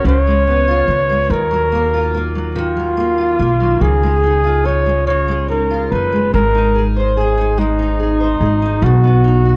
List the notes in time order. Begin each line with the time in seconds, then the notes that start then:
Already playing: C#4 F#4 A#4
0.04 C#2 C#3 C#5
0.27 G#3
0.47 B3
0.68 F4
0.88 C#2 B3
1.09 G#3
1.30 D#2 D#3 A#4
1.51 F#3
1.72 A#3
1.94 F4
2.14 A#3
2.35 F#3
2.55 D#3 F4
2.77 F#3
2.97 A#3
3.18 F4
3.39 B1 A#3
3.60 F#3
3.81 C#2 C#3 G#4
4.03 G#3
4.23 D#4
4.44 F4
4.65 D#4 C#5
4.86 G#3
5.07 C#3 C#5
5.28 G#3
5.48 D#4 A#4
5.70 F4
5.91 F#1 D#4 B4
6.12 G#3
6.33 G#1 G#3 A#4
6.54 D#4
6.75 G#4
6.96 C5
7.17 G#4
7.38 D#4
7.58 G#3 D#4
7.79 D#4
8.00 G#4
8.21 C5
8.41 G#1 G#4
8.62 D#4
8.82 B1 B2 F#4
9.04 B3
9.25 D#4
9.46 F#4